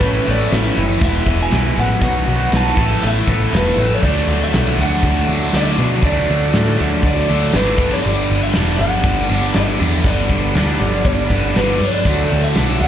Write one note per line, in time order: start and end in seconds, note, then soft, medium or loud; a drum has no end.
0.00 0.19 A1 medium
0.00 0.26 A2 medium
0.00 0.24 A2 medium
0.00 0.26 E3 medium
0.00 0.25 E3 loud
0.00 0.26 A3 loud
0.00 0.26 B3 medium
0.00 0.26 C#4 loud
0.00 0.98 E4 medium
0.00 0.26 E4 loud
0.00 0.24 E4 loud
0.00 1.00 A4 medium
0.00 0.29 B4 medium
0.00 0.98 B4 medium
0.00 1.00 C#5 medium
0.00 kick loud
0.00 ride medium
0.25 0.46 A1 medium
0.25 0.50 A2 medium
0.25 0.51 E3 medium
0.25 0.51 A3 loud
0.25 0.50 B3 soft
0.25 0.51 C#4 medium
0.25 0.50 C#4 soft
0.25 0.51 E4 medium
0.25 0.52 E4 medium
0.25 ride medium
0.31 0.52 D5 loud
0.40 snare soft
0.50 0.70 A1 medium
0.50 0.76 A2 medium
0.50 0.75 A2 medium
0.50 0.76 E3 medium
0.50 0.75 E3 loud
0.50 0.76 A3 loud
0.50 0.76 B3 medium
0.50 0.76 C#4 medium
0.50 0.77 C#4 loud
0.50 0.74 E4 medium
0.50 0.77 E4 loud
0.50 1.03 E5 loud
0.50 snare loud
0.50 ride loud
0.75 0.95 F#1 loud
0.75 1.00 A2 medium
0.75 1.00 E3 medium
0.75 1.00 A3 loud
0.75 1.02 B3 soft
0.75 1.02 C#4 medium
0.75 1.01 C#4 loud
0.75 1.01 E4 medium
0.75 1.01 E4 loud
0.75 ride medium
0.99 1.20 E1 medium
0.99 1.25 E2 loud
0.99 1.26 B2 loud
0.99 1.27 E3 medium
0.99 1.26 E3 loud
0.99 1.25 G#3 loud
0.99 1.27 G#3 medium
0.99 1.25 B3 loud
0.99 2.00 E4 medium
0.99 1.26 E4 medium
0.99 2.00 G#4 medium
0.99 2.00 B4 medium
0.99 2.00 E5 medium
0.99 kick loud
0.99 ride loud
1.04 1.27 B3 medium
1.04 1.26 E4 medium
1.04 1.38 E5 medium
1.26 1.45 E1 medium
1.26 1.50 E2 medium
1.26 1.51 B2 medium
1.26 1.52 E3 medium
1.26 1.51 G#3 medium
1.26 1.53 G#3 medium
1.26 1.51 B3 medium
1.26 1.53 B3 medium
1.26 1.52 E4 soft
1.26 1.52 E4 medium
1.26 kick medium
1.26 ride medium
1.30 1.53 E3 soft
1.43 1.79 G#5 loud
1.51 1.70 B1 loud
1.51 1.75 E2 medium
1.51 1.77 E2 medium
1.51 1.75 B2 loud
1.51 1.78 B2 medium
1.51 1.76 E3 loud
1.51 1.78 E3 medium
1.51 1.77 G#3 loud
1.51 1.78 G#3 medium
1.51 1.77 B3 loud
1.51 1.77 B3 medium
1.51 1.77 E4 loud
1.51 1.76 E4 medium
1.51 snare loud
1.51 ride loud
1.76 1.96 A1 medium
1.76 2.00 E2 medium
1.76 2.00 B2 medium
1.76 2.00 E3 medium
1.76 2.01 G#3 medium
1.76 2.03 G#3 soft
1.76 2.01 B3 medium
1.76 2.02 B3 medium
1.76 2.02 E4 medium
1.76 2.01 E4 loud
1.76 2.56 F#5 loud
1.76 ride medium
1.81 2.02 E3 soft
2.01 2.20 B1 loud
2.01 2.26 B2 loud
2.01 2.27 B2 medium
2.01 2.26 D#3 loud
2.01 2.27 F#3 loud
2.01 2.27 F#3 medium
2.01 2.27 B3 loud
2.01 2.28 B3 medium
2.01 2.76 D#4 medium
2.01 2.27 D#4 medium
2.01 2.76 F#4 medium
2.01 2.28 F#4 loud
2.01 2.25 F#4 loud
2.01 2.75 B4 medium
2.01 2.76 D#5 medium
2.01 kick loud
2.01 ride medium
2.27 2.46 B1 medium
2.27 2.51 B2 medium
2.27 2.51 D#3 medium
2.27 2.52 F#3 medium
2.27 2.52 B3 medium
2.27 2.51 B3 soft
2.27 2.52 D#4 medium
2.27 2.52 F#4 medium
2.27 2.53 F#4 loud
2.27 ride medium
2.52 2.71 B1 medium
2.52 2.77 B2 medium
2.52 2.76 B2 loud
2.52 2.76 D#3 loud
2.52 2.77 F#3 medium
2.52 2.76 F#3 loud
2.52 2.77 B3 medium
2.52 2.76 B3 loud
2.52 2.78 D#4 medium
2.52 2.77 F#4 loud
2.52 2.76 F#4 medium
2.52 snare loud
2.52 ride loud
2.57 3.06 A5 loud
2.76 2.96 A1 medium
2.76 3.02 A2 loud
2.76 3.02 E3 medium
2.76 3.03 A3 loud
2.76 3.02 A3 soft
2.76 3.01 B3 loud
2.76 3.02 B3 soft
2.76 4.02 E4 medium
2.76 3.02 E4 loud
2.76 3.02 A4 medium
2.76 4.02 A4 medium
2.76 3.02 A4 loud
2.76 4.01 B4 medium
2.76 4.01 E5 medium
2.76 kick loud
2.76 ride medium
3.01 3.22 A1 medium
3.01 3.26 A2 loud
3.01 3.27 E3 medium
3.01 3.27 E3 loud
3.01 3.28 A3 medium
3.01 3.27 A3 loud
3.01 3.27 B3 loud
3.01 3.26 B3 medium
3.01 3.27 E4 loud
3.01 3.28 A4 loud
3.01 3.25 A4 medium
3.01 ride loud
3.07 3.76 E5 loud
3.26 3.46 A1 medium
3.26 3.51 A2 medium
3.26 3.52 E3 medium
3.26 3.52 A3 loud
3.26 3.53 A3 soft
3.26 3.53 B3 medium
3.26 3.51 B3 medium
3.26 3.52 E4 medium
3.26 3.52 A4 medium
3.26 kick medium
3.26 ride medium
3.52 3.71 E1 loud
3.52 3.77 A2 medium
3.52 3.75 A2 loud
3.52 3.78 E3 medium
3.52 3.76 E3 loud
3.52 3.77 A3 loud
3.52 3.78 A3 medium
3.52 3.77 B3 loud
3.52 3.77 B3 medium
3.52 3.77 E4 loud
3.52 3.78 A4 loud
3.52 3.75 A4 medium
3.52 snare loud
3.52 ride medium
3.57 3.93 B4 medium
3.77 3.96 A1 medium
3.77 4.01 A2 medium
3.77 4.01 E3 medium
3.77 4.01 A3 medium
3.77 4.04 A3 medium
3.77 4.03 B3 medium
3.77 4.01 B3 loud
3.77 4.02 E4 loud
3.77 4.02 A4 medium
3.77 4.02 A4 loud
3.77 ride medium
3.94 4.43 D5 loud
4.02 4.26 D2 loud
4.02 4.52 D3 loud
4.02 4.30 F#3 loud
4.02 4.29 A3 loud
4.02 7.75 D4 medium
4.02 4.28 D4 loud
4.02 7.75 F#4 medium
4.02 7.75 A4 medium
4.02 7.75 D5 medium
4.02 kick loud
4.02 crash loud
4.02 crash medium
4.27 4.51 D2 medium
4.27 4.53 F#3 medium
4.27 4.54 A3 medium
4.27 4.54 D4 medium
4.27 crash medium
4.44 4.81 E5 medium
4.52 4.76 B1 loud
4.52 5.50 D3 medium
4.52 5.29 F#3 medium
4.52 5.27 A3 medium
4.52 5.27 D4 medium
4.52 snare loud
4.52 crash medium
4.77 5.01 D2 medium
4.77 5.51 D3 medium
4.77 5.52 F#3 medium
4.77 5.52 A3 loud
4.77 5.55 D4 loud
4.77 crash medium
4.82 5.56 F#5 loud
5.03 5.26 D2 loud
5.03 kick loud
5.03 crash medium
5.27 5.51 D2 medium
5.27 5.51 F#3 medium
5.27 5.52 A3 medium
5.27 5.54 D4 medium
5.27 crash medium
5.52 5.76 D2 loud
5.52 6.00 D3 medium
5.52 5.78 F#3 loud
5.52 5.77 A3 loud
5.52 5.77 D4 loud
5.52 snare loud
5.52 crash medium
5.56 6.05 E5 loud
5.77 6.01 B2 medium
5.77 6.01 F#3 medium
5.77 6.02 A3 medium
5.77 6.04 D4 medium
5.77 crash medium
6.02 6.26 D2 loud
6.02 6.51 D3 loud
6.02 6.28 F#3 loud
6.02 6.27 A3 loud
6.02 6.26 D4 loud
6.02 7.05 D5 loud
6.02 kick loud
6.02 crash medium
6.27 6.52 D2 medium
6.27 6.52 F#3 medium
6.27 6.53 A3 medium
6.27 6.54 D4 medium
6.27 crash medium
6.52 6.77 A2 medium
6.52 7.52 D3 medium
6.52 7.29 F#3 medium
6.52 7.28 A3 medium
6.52 7.28 D4 medium
6.52 snare loud
6.52 crash medium
6.78 7.03 D2 medium
6.78 7.52 D3 medium
6.78 7.53 F#3 medium
6.78 7.53 A3 medium
6.78 7.56 D4 loud
6.78 crash medium
7.03 7.26 D2 loud
7.03 7.57 D5 loud
7.03 kick loud
7.03 crash medium
7.28 7.52 D2 medium
7.28 7.53 F#3 medium
7.28 7.54 A3 medium
7.28 7.55 D4 medium
7.28 crash medium
7.52 7.79 G#1 loud
7.52 7.77 D3 medium
7.52 7.77 F#3 loud
7.52 7.77 A3 loud
7.52 7.77 D4 loud
7.52 7.94 B4 medium
7.52 snare loud
7.52 crash medium
7.78 8.02 G1 loud
7.78 8.03 G2 medium
7.78 8.03 D3 medium
7.78 8.04 G3 medium
7.78 8.05 B3 medium
7.78 8.05 D4 medium
7.78 12.01 D4 medium
7.78 12.01 G4 medium
7.78 12.01 B4 medium
7.78 12.01 D5 medium
7.78 kick loud
7.78 crash loud
7.93 8.43 D5 loud
8.03 8.28 G1 medium
8.03 9.53 G2 medium
8.03 8.52 D3 loud
8.03 8.30 G3 loud
8.03 8.29 B3 loud
8.03 8.28 D4 loud
8.03 crash medium
8.27 8.53 G1 medium
8.27 8.54 G3 medium
8.27 8.55 B3 medium
8.27 8.55 D4 medium
8.27 crash medium
8.43 8.77 E5 loud
8.53 8.78 E1 loud
8.53 9.28 G2 medium
8.53 9.53 D3 medium
8.53 9.31 G3 medium
8.53 9.29 B3 medium
8.53 9.29 D4 medium
8.53 snare loud
8.53 crash medium
8.78 9.02 G1 loud
8.78 9.51 F#5 loud
8.78 crash medium
9.03 9.27 G1 medium
9.03 kick loud
9.03 crash medium
9.29 9.53 G1 medium
9.29 9.78 G2 medium
9.29 9.79 D3 medium
9.29 9.53 G3 medium
9.29 9.54 B3 medium
9.29 9.56 D4 medium
9.29 crash medium
9.53 9.78 G1 medium
9.53 10.03 G2 medium
9.53 10.03 D3 loud
9.53 9.81 G3 loud
9.53 9.80 B3 loud
9.53 9.79 D4 medium
9.53 10.02 E5 loud
9.53 snare loud
9.53 crash medium
9.79 10.03 E2 loud
9.79 10.53 G2 medium
9.79 10.53 D3 loud
9.79 10.04 G3 medium
9.79 10.04 B3 medium
9.79 10.06 D4 medium
9.79 crash medium
10.04 10.28 G1 medium
10.04 10.54 G2 medium
10.04 10.53 D3 loud
10.04 10.30 G3 loud
10.04 10.29 B3 loud
10.04 10.29 D4 loud
10.04 11.02 D5 loud
10.04 kick loud
10.04 crash medium
10.29 10.53 G1 medium
10.29 10.54 G3 medium
10.29 10.55 B3 medium
10.29 10.56 D4 medium
10.29 kick medium
10.29 crash medium
10.54 10.78 D2 medium
10.54 11.29 G2 medium
10.54 11.55 D3 medium
10.54 11.32 G3 medium
10.54 11.31 B3 medium
10.54 11.30 D4 medium
10.54 snare loud
10.54 crash medium
10.79 11.03 G1 medium
10.79 crash medium
11.04 11.28 G1 medium
11.04 11.57 D5 medium
11.04 kick loud
11.04 crash medium
11.30 11.53 G1 medium
11.30 11.80 G2 medium
11.30 11.80 D3 medium
11.30 11.55 G3 medium
11.30 11.56 B3 medium
11.30 11.57 D4 medium
11.30 kick medium
11.30 crash medium
11.55 11.79 G1 medium
11.55 12.04 G2 loud
11.55 12.03 D3 loud
11.55 11.81 G3 medium
11.55 11.80 B3 loud
11.55 11.79 D4 loud
11.55 11.84 B4 medium
11.55 snare loud
11.55 crash medium
11.80 12.04 G2 medium
11.80 12.04 G3 medium
11.80 12.04 B3 medium
11.80 12.07 D4 medium
11.80 crash medium
11.86 11.93 C#5 medium
11.94 12.40 D5 medium
12.04 12.28 D2 loud
12.04 12.55 D3 loud
12.04 12.30 D3 medium
12.04 12.32 F#3 loud
12.04 12.32 A3 loud
12.04 12.31 A3 medium
12.04 12.30 D4 medium
12.04 12.88 D4 medium
12.04 12.29 D4 loud
12.04 12.88 F#4 medium
12.04 12.29 F#4 loud
12.04 12.88 A4 medium
12.04 12.88 F#5 medium
12.04 kick loud
12.04 crash medium
12.30 12.54 D2 medium
12.30 12.56 F#3 medium
12.30 12.57 A3 medium
12.30 12.55 A3 soft
12.30 12.58 D4 medium
12.30 12.56 D4 medium
12.30 12.55 F#4 medium
12.30 crash medium
12.44 12.79 E5 loud
12.55 12.79 B1 medium
12.55 12.81 D3 medium
12.55 12.88 D3 medium
12.55 12.88 F#3 medium
12.55 12.81 A3 medium
12.55 12.88 A3 medium
12.55 12.80 D4 medium
12.55 12.88 D4 medium
12.55 snare loud
12.55 crash medium
12.59 12.79 F#4 medium
12.80 12.88 D2 medium
12.80 12.88 D3 medium
12.80 12.88 F#3 medium
12.80 12.88 A3 medium
12.80 12.88 D4 loud
12.80 12.88 D4 soft
12.80 12.88 F#4 medium
12.80 12.88 F#5 loud
12.80 crash medium